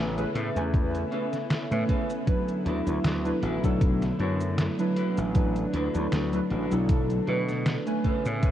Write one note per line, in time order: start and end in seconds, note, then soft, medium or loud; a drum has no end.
0.00 0.23 A1 loud
0.00 2.23 C#3 medium
0.00 0.12 A3 medium
0.00 8.51 A3 medium
0.00 8.51 B3 medium
0.00 0.13 C#4 medium
0.00 5.31 E4 medium
0.00 0.13 B4 medium
0.00 0.13 G#5 medium
0.17 0.29 A3 medium
0.17 0.29 C#4 medium
0.17 0.29 G#4 medium
0.17 0.30 B4 loud
0.17 closed hi-hat soft
0.17 cabasa soft
0.34 0.49 A2 loud
0.34 0.56 C#4 medium
0.34 0.56 G#4 medium
0.34 0.56 A4 medium
0.34 0.57 B4 loud
0.34 closed hi-hat medium
0.55 1.03 E2 loud
0.55 1.07 A3 medium
0.55 1.08 C#4 medium
0.55 1.08 B4 loud
0.55 1.08 G#5 medium
0.55 closed hi-hat soft
0.55 cabasa medium
0.74 kick loud
0.74 closed hi-hat medium
0.74 cabasa soft
0.95 closed hi-hat soft
0.95 cabasa soft
1.11 1.26 A3 medium
1.11 1.33 C#4 medium
1.11 1.26 C#4 medium
1.11 1.33 G#4 medium
1.11 1.26 G#4 medium
1.11 1.33 A4 medium
1.11 1.26 B4 medium
1.11 1.34 B4 medium
1.11 closed hi-hat soft
1.33 snare soft
1.33 closed hi-hat soft
1.33 cabasa medium
1.50 snare loud
1.50 closed hi-hat medium
1.50 cabasa soft
1.71 1.83 A2 medium
1.71 2.23 A3 medium
1.71 2.23 C#4 medium
1.71 2.24 B4 loud
1.71 2.23 G#5 medium
1.71 closed hi-hat soft
1.71 cabasa soft
1.88 2.10 C#4 medium
1.88 2.10 G#4 medium
1.88 2.10 A4 medium
1.88 2.10 B4 medium
1.88 kick medium
1.88 closed hi-hat medium
2.10 closed hi-hat soft
2.10 cabasa medium
2.27 8.00 D3 medium
2.27 2.81 F#3 medium
2.27 8.00 F#3 medium
2.27 2.82 D4 medium
2.27 2.82 E4 medium
2.27 2.82 B4 loud
2.27 kick loud
2.27 closed hi-hat medium
2.27 cabasa soft
2.49 closed hi-hat soft
2.49 cabasa soft
2.65 2.80 D2 medium
2.65 2.87 D4 medium
2.65 2.87 E4 medium
2.65 2.87 F#4 medium
2.65 2.87 B4 loud
2.65 closed hi-hat medium
2.86 2.98 D2 loud
2.86 3.20 F#3 medium
2.86 3.20 D4 medium
2.86 3.20 E4 medium
2.86 3.21 B4 medium
2.86 closed hi-hat soft
2.86 cabasa medium
3.04 3.31 D2 loud
3.04 snare loud
3.04 closed hi-hat medium
3.04 cabasa soft
3.24 3.37 F#3 medium
3.24 3.37 D4 medium
3.24 3.37 E4 medium
3.24 3.37 B4 loud
3.24 closed hi-hat soft
3.24 cabasa soft
3.42 3.57 A1 medium
3.42 3.63 D4 medium
3.42 3.64 E4 medium
3.42 3.64 F#4 medium
3.42 3.64 B4 loud
3.42 closed hi-hat medium
3.63 4.10 B1 loud
3.63 4.15 F#3 medium
3.63 4.15 D4 medium
3.63 4.16 E4 medium
3.63 4.16 A4 loud
3.63 kick medium
3.63 closed hi-hat soft
3.63 cabasa medium
3.81 kick loud
3.81 closed hi-hat medium
3.81 cabasa soft
4.02 snare soft
4.02 closed hi-hat soft
4.02 cabasa soft
4.19 4.68 F#2 loud
4.19 4.33 F#3 medium
4.19 4.40 D4 medium
4.19 4.34 D4 medium
4.19 4.41 E4 medium
4.19 4.34 E4 medium
4.19 4.41 F#4 medium
4.19 4.34 B4 medium
4.19 4.41 C#5 medium
4.19 closed hi-hat soft
4.41 closed hi-hat soft
4.41 cabasa medium
4.58 snare loud
4.58 closed hi-hat medium
4.58 cabasa soft
4.78 5.31 F#3 medium
4.78 5.31 D4 medium
4.78 5.31 E4 medium
4.78 5.31 B4 loud
4.78 closed hi-hat soft
4.78 cabasa soft
4.96 5.17 D4 medium
4.96 5.18 E4 medium
4.96 5.18 F#4 medium
4.96 5.18 B4 medium
4.96 closed hi-hat medium
5.17 5.64 A1 medium
5.17 closed hi-hat soft
5.17 cabasa medium
5.34 5.89 F#3 medium
5.34 5.89 D4 medium
5.34 8.02 D4 loud
5.34 5.90 E4 medium
5.34 5.90 B4 loud
5.34 kick loud
5.34 closed hi-hat medium
5.34 cabasa soft
5.56 closed hi-hat soft
5.56 cabasa soft
5.73 5.87 D2 medium
5.73 5.94 D4 medium
5.73 5.95 E4 medium
5.73 5.95 F#4 medium
5.73 5.95 B4 loud
5.73 closed hi-hat medium
5.94 6.06 D2 loud
5.94 6.28 F#3 medium
5.94 6.28 D4 medium
5.94 6.28 E4 medium
5.94 6.28 B4 medium
5.94 closed hi-hat soft
5.94 cabasa medium
6.12 6.39 D2 medium
6.12 snare loud
6.12 closed hi-hat medium
6.12 cabasa soft
6.32 6.44 F#3 loud
6.32 6.45 D4 medium
6.32 6.45 E4 medium
6.32 6.45 B4 loud
6.32 closed hi-hat soft
6.32 cabasa soft
6.50 6.65 A1 loud
6.50 6.71 D4 medium
6.50 6.71 E4 medium
6.50 6.72 F#4 medium
6.50 6.72 B4 loud
6.50 closed hi-hat medium
6.71 7.18 B1 loud
6.71 7.23 F#3 medium
6.71 7.23 D4 medium
6.71 7.23 E4 medium
6.71 7.24 A4 loud
6.71 closed hi-hat soft
6.71 cabasa medium
6.89 kick loud
6.89 closed hi-hat medium
6.89 cabasa soft
7.10 closed hi-hat soft
7.10 cabasa soft
7.27 7.76 B2 loud
7.27 7.41 F#3 medium
7.27 7.48 D4 medium
7.27 7.41 D4 medium
7.27 7.48 E4 medium
7.27 7.42 E4 medium
7.27 7.49 F#4 medium
7.27 7.42 B4 medium
7.27 7.49 B4 loud
7.27 closed hi-hat soft
7.49 snare soft
7.49 closed hi-hat soft
7.49 cabasa medium
7.66 snare loud
7.66 closed hi-hat medium
7.66 cabasa soft
7.86 8.38 A3 medium
7.86 8.38 C#4 medium
7.86 8.39 B4 loud
7.86 8.39 G#5 medium
7.86 closed hi-hat soft
7.86 cabasa soft
8.04 8.51 C#3 medium
8.04 8.51 C#4 loud
8.04 8.51 E4 medium
8.04 8.51 G#4 medium
8.04 8.51 A4 medium
8.04 8.51 B4 loud
8.04 kick medium
8.04 closed hi-hat medium
8.25 8.51 A2 medium
8.25 closed hi-hat soft
8.25 cabasa medium
8.42 8.51 A3 medium
8.42 8.51 C#4 medium
8.42 8.51 B4 loud
8.42 8.51 G#5 medium
8.42 kick loud
8.42 closed hi-hat medium
8.42 cabasa soft